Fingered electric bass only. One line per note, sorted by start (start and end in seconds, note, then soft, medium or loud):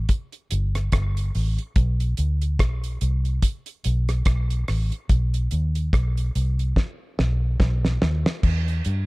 0.52 0.89 G1 medium
0.93 1.30 G1 medium
1.35 1.56 A1 medium
1.76 2.13 B1 loud
2.19 2.60 D2 medium
2.60 2.97 B1 medium
3.02 3.39 C2 medium
3.86 4.22 B1 medium
4.26 4.63 B1 medium
4.69 4.90 A1 medium
5.10 5.47 B1 medium
5.52 5.89 D#2 medium
5.94 6.30 B1 medium
6.36 6.72 C2 medium
7.19 7.56 B1 medium
7.60 7.97 B1 medium
8.03 8.24 D#2 medium
8.44 8.81 E2 loud
8.86 9.06 G2 medium